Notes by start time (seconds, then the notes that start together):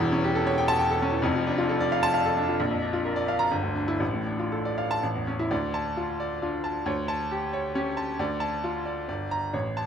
Already playing: E1 E2
0.01 E3
0.12 C#4
0.24 G4
0.35 A4
0.47 C#5
0.58 G5
0.68 A5
0.79 G5
0.91 A4
1.02 C#4
1.12 E3
1.22 F1 F2
1.35 F3
1.47 D4
1.58 F4
1.69 A4
1.80 D5
1.92 F5
2.03 A5
2.14 F5
2.26 A4
2.37 D4
2.48 F3
2.60 A#1
2.71 F2
2.82 D4
2.93 F4
3.05 A#4
3.16 D5
3.28 F5
3.39 A#5
3.51 G1
3.63 D2
3.75 D4
3.88 E4
4.00 A1
4.14 A2
4.26 D4
4.39 F4
4.52 A4
4.65 D5
4.78 F5
4.91 A5
5.03 A1
5.15 E2
5.27 C#4
5.39 E4
5.51 D2 D5
5.74 A5
5.97 F4
6.20 D5
6.42 D4 F4
6.64 A5
6.86 D2 C#5
7.08 A5
7.31 G4
7.53 C#5
7.75 C#4 G4
7.97 A5
8.19 D2 D5
8.40 A5
8.64 F4
8.85 D5
9.08 G1 D5
9.31 A#5
9.54 A1 C#5
9.77 A5